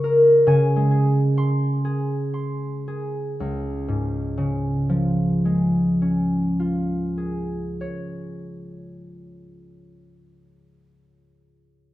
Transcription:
Already playing: C#3 C#4 A#5 C#6
0.04 A#4
0.47 C#3 G#5
0.76 G#3
0.91 G#4
1.38 C6
1.85 G#4
2.34 C6
2.88 G#4
3.40 C#2
3.88 G#2
4.38 C#3
4.89 F3
5.45 G#3
6.02 C#4
6.60 F4
7.18 G#4
7.81 C#5

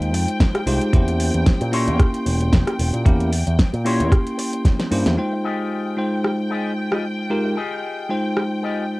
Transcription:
Already playing: D#2 G#3 D#4 F4 C5 G5
0.02 closed hi-hat
0.13 F2, muted clean electric guitar stroke, open hi-hat
0.28 muted clean electric guitar stroke, closed hi-hat
0.40 kick, snare, closed hi-hat
0.54 muted clean electric guitar stroke, cross-stick, closed hi-hat
0.66 C2 G#3 D#4 F4 G4 C5, muted clean electric guitar stroke, open hi-hat
0.81 closed hi-hat
0.92 E2 A#3 C#4 E4 G4 C5, kick, closed hi-hat
1.08 closed hi-hat
1.20 open hi-hat
1.34 E2, closed hi-hat
1.46 kick, snare, closed hi-hat
1.61 A#2, muted clean electric guitar stroke, closed hi-hat
1.72 A#3 C#4 E4 G4 A#4 C#5 C6, open hi-hat
1.87 E2, closed hi-hat
2.00 kick, cross-stick, closed hi-hat
2.14 closed hi-hat
2.26 E1, muted clean electric guitar stroke, open hi-hat
2.40 muted clean electric guitar stroke, closed hi-hat
2.53 kick, snare, closed hi-hat
2.67 muted clean electric guitar stroke, cross-stick, closed hi-hat
2.79 E1, muted clean electric guitar stroke, open hi-hat
2.93 A#2, closed hi-hat
3.05 E2 A#3 C#4 E4 G4 A#4, kick, closed hi-hat
3.20 closed hi-hat
3.33 open hi-hat
3.47 E2, closed hi-hat
3.59 kick, snare, closed hi-hat
3.73 A#2, muted clean electric guitar stroke, closed hi-hat
3.85 A#3 C#4 E4 G4 A#4 C#5 C6, open hi-hat
4.00 E2, closed hi-hat
4.12 kick, cross-stick, closed hi-hat
4.27 closed hi-hat
4.38 muted clean electric guitar stroke, open hi-hat
4.52 muted clean electric guitar stroke, closed hi-hat
4.65 kick, snare, closed hi-hat
4.79 muted clean electric guitar stroke, snare, closed hi-hat
4.91 G2 A#3 C#4 E4 G4 C5, muted clean electric guitar stroke, open hi-hat
5.06 E2, snare, closed hi-hat
5.17 G#3 D#4 F4 C5 G5
5.32 muted clean electric guitar stroke
5.44 F4 G4 G#4 D#5
5.97 G#3 D#4 F4 C5 G5
6.24 cross-stick
6.50 F4 G4 G#4 D#5
6.91 F4 G4 G#4 D#5, cross-stick
7.18 muted clean electric guitar stroke
7.30 G#3 D#4 F4 G4 A#4
7.44 muted clean electric guitar stroke
7.56 F4 G4 G#4 D#5
8.09 G#3 D#4 F4 C5 G5
8.37 cross-stick
8.63 F4 G4 G#4 D#5

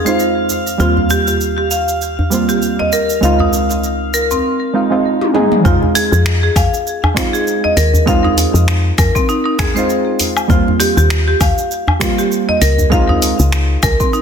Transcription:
Already playing: F2 G#3 C4 D#4 F4 F5
0.04 G#3 C4 D#4 F4 C5, djembe tone, cabasa
0.20 cabasa
0.50 djembe slap, cabasa
0.67 cabasa
0.78 D#2 G3 A#3 C4 F4, cabasa
0.97 djembe bass
1.10 G4, djembe tone, cabasa
1.27 G4, djembe slap, cabasa
1.41 cabasa
1.58 G4
1.71 F5, cabasa
1.88 cabasa
2.02 cabasa
2.19 djembe bass
2.30 G3 A#3 C4 F4, djembe slap, cabasa
2.49 G4, cabasa
2.62 cabasa
2.79 D#5, djembe slap, djembe tone
2.92 A#4, cabasa
3.10 cabasa
3.21 C#2 G#3 C4 D#4 F4 F5, cabasa
3.39 D#4, djembe bass
3.53 djembe tone, cabasa
3.70 djembe slap, cabasa
3.84 cabasa
4.14 A#4, cabasa
4.31 C4, djembe slap, djembe tone, cabasa
4.73 G#3 C4 D#4 F4
4.90 G#3 C4 D#4 F4
5.21 high tom
5.33 G#3 C4 D#4 G#4, mid tom
5.52 mid tom
5.63 F2 G#3 C4 D#4 F4, kick, cabasa
5.83 djembe bass
5.95 G#4, open hi-hat, djembe slap, djembe tone, cabasa
6.12 F2 G#4, djembe slap, cabasa
6.26 finger snap, cabasa
6.43 G#4
6.56 F2 F5, kick, open hi-hat, cabasa, low woodblock
6.73 djembe tone, cabasa
6.87 cabasa
7.03 djembe bass, low woodblock
7.14 G#3 C4 D#4 F4, finger snap, kick, open hi-hat, djembe slap, cabasa
7.33 G#4, cabasa
7.47 cabasa
7.64 D#5, djembe tone
7.77 D#2 A#4, open hi-hat, cabasa
7.94 djembe bass, cabasa
8.06 G#3 C4 D#4 F4 F5, kick, cabasa
8.24 D#4, djembe bass
8.37 open hi-hat, djembe slap, djembe tone, cabasa
8.54 F2, djembe slap, cabasa
8.68 finger snap, cabasa
8.98 F2 A#4, kick, open hi-hat, cabasa, low woodblock
9.15 C4, kick, cabasa
9.29 D#4, cabasa
9.46 D#4
9.59 G#4, finger snap, kick, open hi-hat, djembe bass, cabasa, low woodblock
9.74 G#3 C4 D#4 F4 C5, djembe tone, cabasa
9.90 cabasa
10.20 open hi-hat, djembe tone, cabasa
10.37 cabasa, low woodblock
10.48 D#2 G3 A#3 C4 F4, kick, cabasa
10.68 djembe bass
10.80 G4, open hi-hat, djembe slap, djembe tone, cabasa
10.97 D#2 G4, djembe slap, cabasa
11.10 finger snap, cabasa
11.27 G4
11.41 D#2 F5, kick, open hi-hat, cabasa, low woodblock
11.57 djembe tone, cabasa
11.71 cabasa
11.87 djembe bass, low woodblock
11.99 G3 A#3 C4 F4, finger snap, kick, open hi-hat, djembe slap, cabasa
12.18 G4, cabasa
12.32 cabasa
12.49 D#5, djembe tone
12.61 C#2 A#4, open hi-hat, cabasa
12.78 djembe bass, cabasa
12.90 G#3 C4 D#4 F4 F5, kick, cabasa
13.09 D#4, djembe bass
13.22 open hi-hat, djembe slap, djembe tone, cabasa
13.39 C#2, djembe slap, cabasa
13.52 finger snap, cabasa
13.83 C#2 A#4, kick, open hi-hat, cabasa, low woodblock
14.00 C4, kick, cabasa
14.13 D#4, cabasa

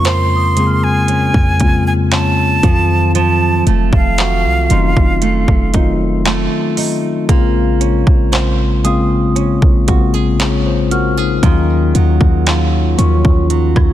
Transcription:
Already playing: F2 C#3 G#3 A#3 C4 C#4 F4
0.05 A#4 C5 C6, clap, closed hi-hat
0.36 D#6
0.56 C#3 G#3 A#3 C4 G#4, closed hi-hat
0.67 F6
0.84 G#5
1.08 C#4, closed hi-hat
1.34 F2, kick
1.59 C#3 G#3 A#3 C4 F4, kick, closed hi-hat
1.87 G#5
2.12 C#4 A5, clap, closed hi-hat
2.62 F2 D#3 F3 F#3 C4 F4 A4, kick, closed hi-hat
3.15 F3 A5, closed hi-hat
3.67 F1 A3, closed hi-hat
3.93 F1 F5, kick
4.18 F#4, clap, closed hi-hat
4.45 C2
4.70 F1 D#3 F#3 A3 C4 C#4 D#4 C6, closed hi-hat
4.79 D#4
4.97 F1, kick
5.22 A3, closed hi-hat
5.48 F1, kick
5.73 D#3 F#3 A3 C4 D#4 F4, kick, closed hi-hat
6.25 A3, clap, closed hi-hat
6.77 D#4, open hi-hat
7.28 A#1 C#3 G#3 A#3 C4 F4, kick, closed hi-hat
7.81 C#4, closed hi-hat
8.07 A#1, kick
8.32 C5, clap, closed hi-hat
8.83 C#3 G#3 A#3 C4 F4 G#4 D#6, closed hi-hat
9.36 C#4, closed hi-hat
9.62 A#1, kick
9.87 C#3 G#3 A#3 C4 F4 F#4, kick, closed hi-hat
10.14 G#4
10.40 C#4 G#4 C#5, clap, closed hi-hat
10.66 F4 C5
10.91 F4 F#4 A#4 F6, closed hi-hat
11.17 D#4 G#4
11.42 D#2 D#3 F#3 A#3 C#4 F4, kick, closed hi-hat
11.95 D#2 F#3, closed hi-hat
12.21 D#2, kick
12.47 F4, clap, closed hi-hat
12.98 D#2 D#3 F3 A#3 C#4 F4 C#6, closed hi-hat
13.05 F#3
13.25 D#2, kick
13.50 F#3, closed hi-hat
13.76 D#2, kick, cross-stick

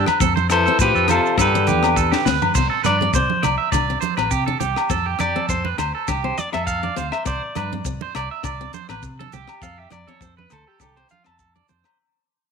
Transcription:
Already playing: C4
0.06 B4, cross-stick, high conga, low agogo, maracas
0.20 F2 C4 A4, kick, low conga, maracas
0.36 C5, high conga, maracas
0.50 E3 A4 C5, muted clean electric guitar stroke, cross-stick, closed hi-hat, low agogo, maracas
0.66 C4 A4, maracas
0.79 A2 F3 C4 G4 B4 C5, kick, maracas
0.95 F2 A4, maracas
1.08 C3 F4 A4 C5, cross-stick, closed hi-hat, high conga, low agogo, maracas
1.26 maracas
1.38 G2 D3 D4 G4 A4 B4, kick, cross-stick, low agogo, maracas
1.55 muted steel-string acoustic guitar stroke, maracas
1.67 E2 G4, closed hi-hat, high conga, maracas
1.83 C4, cross-stick, low agogo, maracas
1.96 A4, kick, maracas
2.11 D4 G4, snare, maracas
2.25 D2 C4 B4, snare, low conga, maracas
2.42 floor tom, high conga, low agogo, maracas
2.55 C2 C4 C5, kick, crash, maracas
2.70 A4
2.84 G2 B4 D5, cross-stick, closed hi-hat, high conga, low conga, low agogo, maracas
2.99 C4 D5, high conga
3.13 C2 C4 C5, kick, maracas
3.30 high conga
3.42 C2 D5, cross-stick, closed hi-hat, low conga, low agogo, maracas
3.58 E5
3.72 C2 D4 D5, kick, cross-stick, low conga, low agogo, maracas
3.90 C4
4.01 C5, closed hi-hat, high conga, maracas
4.17 A1 C4 B4, cross-stick, low agogo
4.31 C3 G4, kick, maracas
4.46 D4 A4, high conga
4.60 C2 C4 G4, closed hi-hat, low conga, maracas
4.76 cross-stick, low agogo
4.90 F2 C4 A4, kick, maracas
5.06 G4
5.19 F2 G4 D5, cross-stick, closed hi-hat, high conga, low conga, low agogo, maracas
5.36 C4 A4, high conga
5.49 F2 C4 C5, kick, maracas
5.65 B4, high conga
5.78 D2 C5, cross-stick, closed hi-hat, low conga, low agogo, maracas
5.95 A4
6.08 C2 D4 G4, kick, cross-stick, low conga, low agogo, maracas
6.24 C4 C5
6.38 D5, muted clean electric guitar stroke, closed hi-hat, high conga, maracas
6.53 F2 C4 A4 E5, cross-stick, low agogo
6.67 A4 F5, kick, maracas
6.83 D4 D5, high conga
6.96 D2 C4 C5, closed hi-hat, low conga, maracas
7.12 E5, cross-stick, low agogo
7.25 C2 C4 C5 D5, kick, maracas
7.55 G2 B4, cross-stick, closed hi-hat, high conga, low conga, low agogo
7.72 C4, high conga
7.85 C2 C4, kick, maracas
8.01 C5, high conga
8.15 C2 D5, cross-stick, closed hi-hat, low agogo
8.31 E5
8.43 C2 D4 D5, kick, cross-stick, low conga, low agogo, maracas
8.61 C4
8.73 C5, closed hi-hat, high conga, maracas
8.89 A1 C4 B4, cross-stick, low agogo
9.03 C3, kick, maracas
9.19 D4 A4, high conga
9.32 C2 C4 G4, closed hi-hat, low conga, maracas
9.48 cross-stick, low agogo
9.62 F2 C4 A4 F5, kick, maracas
9.78 G4 E5
9.90 F2 D5, muted clean electric guitar stroke, cross-stick, closed hi-hat, high conga, low conga, low agogo, maracas
10.07 C4 A4 C#5, high conga
10.21 F2 C4 C5, kick, maracas
10.37 B4, high conga
10.50 D2 A4 C5, cross-stick, closed hi-hat, low conga, low agogo, maracas
10.67 G4 A4
10.80 C2 D4 G4 A4, kick, cross-stick, low conga, low agogo, maracas
10.97 C4 C5
11.09 F4 F5, closed hi-hat, high conga, maracas
11.24 F2 C4 A4 A5, cross-stick, low agogo
11.39 A4, kick, maracas
11.56 D4 D5, high conga
11.68 F2 C4 C5, closed hi-hat, low conga, maracas
11.84 cross-stick, low agogo

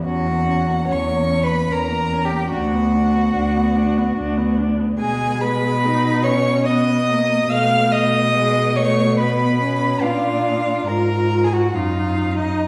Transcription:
0.04 E2 C#4 F#4 F#5
0.28 A#3
0.48 C#4
0.68 A#3
0.88 E2 C#4 C#5
0.92 C#6
1.09 A#3
1.30 C#4
1.43 B4 B5
1.50 A#3
1.69 E2 C#4 A#4 A#5
1.89 A#3
2.12 C#4
2.25 G4 G5
2.32 A#3
2.51 D2 D4 F#4 F#5
2.73 B3
2.95 D4
3.15 B3
3.35 D2 D4
3.57 B3
3.76 D4
3.98 B3
4.17 D2 D4
4.38 B3
4.59 D4
4.80 B3
4.99 B2 G#3 G#4 G#5
5.41 B4 B5
5.85 D#4
6.23 C#4 C#5 C#6
6.66 B3 D#5 D#6
7.10 A#3
7.51 B2 A3 F5 F6
7.91 D#5 D#6
8.34 G#3
8.76 A3 C#5 C#6
9.18 B3 B4 B5
9.62 C#4
10.02 A#2 D4 F4 F5
10.87 G#2 F4 A#4 A#5
11.44 G#4 G#5
11.53 F#4 F#5
11.74 F#2 D#4 F4 F5
12.38 D#4 D#5

